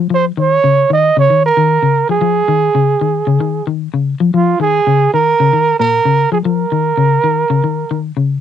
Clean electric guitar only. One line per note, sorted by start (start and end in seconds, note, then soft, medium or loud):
0.10 0.31 F3 medium
0.37 0.57 D#3 medium
0.64 0.84 C#3 medium
0.90 1.10 D#3 medium
1.17 1.27 C#3 medium
1.30 1.50 D#3 medium
1.57 1.77 D#3 medium
1.82 2.03 C#3 medium
2.09 2.19 F3 medium
2.21 2.42 F3 medium
2.48 2.68 D#3 medium
2.75 2.95 C#3 medium
3.01 3.21 D#3 medium
3.27 3.37 C#3 loud
3.40 3.61 D#3 medium
3.67 3.87 D#3 medium
3.94 4.14 C#3 medium
4.20 4.30 F3 medium
4.34 4.54 F3 medium
4.60 4.80 D#3 medium
4.87 5.07 C#3 medium
5.14 5.33 D#3 medium
5.40 5.50 C#3 medium
5.53 5.73 D#3 medium
5.80 6.00 A#2 medium
6.05 6.26 C#3 medium
6.32 6.42 F3 medium
6.45 6.65 F3 medium
6.72 6.92 D#3 medium
6.98 7.18 C#3 medium
7.24 7.44 D#3 medium
7.50 7.61 C#3 medium
7.64 7.84 D#3 medium
7.91 8.11 D#3 medium
8.17 8.37 C#3 medium